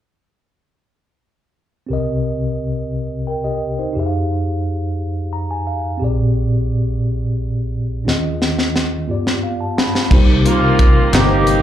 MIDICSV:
0, 0, Header, 1, 6, 480
1, 0, Start_track
1, 0, Tempo, 684932
1, 1327, Time_signature, 6, 3, 24, 8
1, 8145, End_track
2, 0, Start_track
2, 0, Title_t, "Tine electric piano"
2, 0, Program_c, 0, 4
2, 1307, Note_on_c, 0, 60, 45
2, 1322, Note_on_c, 0, 67, 41
2, 1331, Note_on_c, 0, 36, 45
2, 1332, Note_on_c, 0, 48, 42
2, 1339, Note_on_c, 0, 70, 39
2, 1354, Note_on_c, 0, 75, 53
2, 1445, Control_c, 0, 64, 127
2, 2267, Note_off_c, 0, 67, 0
2, 2276, Note_off_c, 0, 70, 0
2, 2284, Note_off_c, 0, 75, 0
2, 2293, Note_on_c, 0, 79, 39
2, 2299, Note_on_c, 0, 70, 37
2, 2405, Note_off_c, 0, 79, 0
2, 2409, Note_off_c, 0, 70, 0
2, 2413, Note_on_c, 0, 75, 45
2, 2416, Note_on_c, 0, 67, 37
2, 2640, Note_off_c, 0, 75, 0
2, 2642, Note_off_c, 0, 67, 0
2, 2654, Note_on_c, 0, 72, 40
2, 2656, Note_on_c, 0, 63, 36
2, 2732, Note_off_c, 0, 60, 0
2, 2742, Note_off_c, 0, 63, 0
2, 2744, Note_off_c, 0, 36, 0
2, 2745, Note_off_c, 0, 48, 0
2, 2750, Note_on_c, 0, 63, 43
2, 2769, Note_on_c, 0, 67, 42
2, 2777, Note_on_c, 0, 41, 49
2, 2779, Control_c, 0, 64, 0
2, 2787, Note_on_c, 0, 68, 43
2, 2800, Note_on_c, 0, 76, 41
2, 2831, Note_off_c, 0, 76, 0
2, 2848, Note_on_c, 0, 77, 49
2, 2880, Note_off_c, 0, 72, 0
2, 2895, Control_c, 0, 64, 127
2, 3733, Note_on_c, 0, 82, 52
2, 3845, Note_off_c, 0, 82, 0
2, 3859, Note_on_c, 0, 80, 47
2, 3967, Note_off_c, 0, 77, 0
2, 3968, Note_off_c, 0, 80, 0
2, 3975, Note_on_c, 0, 77, 47
2, 4175, Note_off_c, 0, 63, 0
2, 4184, Note_off_c, 0, 67, 0
2, 4186, Note_on_c, 0, 60, 49
2, 4188, Note_off_c, 0, 41, 0
2, 4193, Note_off_c, 0, 68, 0
2, 4197, Note_off_c, 0, 77, 0
2, 4201, Note_on_c, 0, 67, 47
2, 4210, Note_on_c, 0, 46, 48
2, 4212, Note_on_c, 0, 34, 49
2, 4220, Control_c, 0, 64, 0
2, 4220, Note_on_c, 0, 68, 41
2, 4234, Note_on_c, 0, 74, 48
2, 4359, Control_c, 0, 64, 127
2, 5611, Note_off_c, 0, 60, 0
2, 5618, Note_off_c, 0, 67, 0
2, 5623, Note_off_c, 0, 46, 0
2, 5624, Note_off_c, 0, 34, 0
2, 5628, Note_off_c, 0, 68, 0
2, 5635, Note_off_c, 0, 74, 0
2, 5641, Note_on_c, 0, 61, 51
2, 5652, Note_on_c, 0, 65, 44
2, 5654, Note_on_c, 0, 39, 44
2, 5654, Note_on_c, 0, 51, 49
2, 5658, Note_on_c, 0, 68, 40
2, 5660, Control_c, 0, 64, 0
2, 5667, Note_on_c, 0, 75, 50
2, 5769, Control_c, 0, 64, 127
2, 6343, Note_off_c, 0, 39, 0
2, 6343, Note_off_c, 0, 51, 0
2, 6359, Note_off_c, 0, 65, 0
2, 6359, Note_on_c, 0, 59, 50
2, 6365, Note_off_c, 0, 61, 0
2, 6368, Note_on_c, 0, 65, 44
2, 6372, Note_on_c, 0, 43, 47
2, 6373, Note_off_c, 0, 68, 0
2, 6376, Note_on_c, 0, 67, 44
2, 6377, Note_off_c, 0, 75, 0
2, 6381, Control_c, 0, 64, 0
2, 6386, Note_on_c, 0, 74, 56
2, 6509, Control_c, 0, 64, 127
2, 6611, Note_on_c, 0, 77, 50
2, 6721, Note_off_c, 0, 77, 0
2, 6731, Note_on_c, 0, 81, 44
2, 6841, Note_off_c, 0, 81, 0
2, 6852, Note_on_c, 0, 83, 46
2, 7060, Note_off_c, 0, 43, 0
2, 7072, Note_off_c, 0, 83, 0
2, 7081, Note_off_c, 0, 59, 0
2, 7081, Note_on_c, 0, 58, 81
2, 7086, Note_off_c, 0, 65, 0
2, 7087, Note_on_c, 0, 63, 77
2, 7090, Note_off_c, 0, 67, 0
2, 7091, Note_on_c, 0, 48, 63
2, 7095, Note_off_c, 0, 74, 0
2, 7096, Control_c, 0, 64, 0
2, 7097, Note_on_c, 0, 67, 74
2, 7106, Note_on_c, 0, 72, 80
2, 7209, Control_c, 0, 64, 127
2, 7732, Note_off_c, 0, 58, 0
2, 7734, Note_off_c, 0, 63, 0
2, 7740, Note_off_c, 0, 67, 0
2, 7744, Note_off_c, 0, 72, 0
2, 7776, Note_off_c, 0, 48, 0
2, 7798, Note_on_c, 0, 58, 56
2, 7805, Note_on_c, 0, 63, 52
2, 7813, Note_on_c, 0, 67, 58
2, 7821, Note_on_c, 0, 71, 49
2, 7857, Note_off_c, 0, 71, 0
2, 7868, Note_on_c, 0, 72, 63
2, 8145, Note_off_c, 0, 58, 0
2, 8145, Note_off_c, 0, 63, 0
2, 8145, Note_off_c, 0, 67, 0
2, 8145, Note_off_c, 0, 72, 0
2, 8145, End_track
3, 0, Start_track
3, 0, Title_t, "Horn section"
3, 0, Program_c, 1, 61
3, 7329, Note_on_c, 1, 65, 81
3, 7336, Note_on_c, 1, 58, 58
3, 7776, Note_off_c, 1, 65, 0
3, 7795, Note_off_c, 1, 58, 0
3, 7795, Note_on_c, 1, 67, 77
3, 7803, Note_on_c, 1, 58, 50
3, 7803, Note_on_c, 1, 63, 55
3, 8145, Note_off_c, 1, 58, 0
3, 8145, Note_off_c, 1, 63, 0
3, 8145, Note_off_c, 1, 67, 0
3, 8145, End_track
4, 0, Start_track
4, 0, Title_t, "Tonewheel organ"
4, 0, Program_c, 2, 16
4, 7085, Note_on_c, 2, 60, 69
4, 7086, Note_on_c, 2, 51, 66
4, 7086, Note_on_c, 2, 58, 66
4, 7088, Note_on_c, 2, 65, 59
4, 7133, Note_off_c, 2, 65, 0
4, 7133, Note_on_c, 2, 67, 72
4, 8145, Note_off_c, 2, 51, 0
4, 8145, Note_off_c, 2, 58, 0
4, 8145, Note_off_c, 2, 60, 0
4, 8145, Note_off_c, 2, 67, 0
4, 8145, End_track
5, 0, Start_track
5, 0, Title_t, "Fingered electric bass"
5, 0, Program_c, 3, 33
5, 7083, Note_on_c, 3, 36, 90
5, 7772, Note_off_c, 3, 36, 0
5, 7802, Note_on_c, 3, 31, 91
5, 8145, Note_off_c, 3, 31, 0
5, 8145, End_track
6, 0, Start_track
6, 0, Title_t, "Drums"
6, 5663, Note_on_c, 9, 38, 39
6, 5733, Note_off_c, 9, 38, 0
6, 5899, Note_on_c, 9, 38, 47
6, 5969, Note_off_c, 9, 38, 0
6, 6017, Note_on_c, 9, 38, 39
6, 6087, Note_off_c, 9, 38, 0
6, 6136, Note_on_c, 9, 38, 51
6, 6206, Note_off_c, 9, 38, 0
6, 6496, Note_on_c, 9, 38, 49
6, 6566, Note_off_c, 9, 38, 0
6, 6856, Note_on_c, 9, 38, 70
6, 6926, Note_off_c, 9, 38, 0
6, 6975, Note_on_c, 9, 38, 59
6, 7045, Note_off_c, 9, 38, 0
6, 7085, Note_on_c, 9, 36, 99
6, 7086, Note_on_c, 9, 49, 80
6, 7155, Note_off_c, 9, 36, 0
6, 7156, Note_off_c, 9, 49, 0
6, 7328, Note_on_c, 9, 42, 50
6, 7398, Note_off_c, 9, 42, 0
6, 7563, Note_on_c, 9, 36, 78
6, 7564, Note_on_c, 9, 42, 54
6, 7633, Note_off_c, 9, 36, 0
6, 7634, Note_off_c, 9, 42, 0
6, 7801, Note_on_c, 9, 42, 79
6, 7805, Note_on_c, 9, 39, 83
6, 7813, Note_on_c, 9, 38, 90
6, 7872, Note_off_c, 9, 42, 0
6, 7875, Note_off_c, 9, 39, 0
6, 7883, Note_off_c, 9, 38, 0
6, 8038, Note_on_c, 9, 42, 57
6, 8108, Note_off_c, 9, 42, 0
6, 8145, End_track
0, 0, End_of_file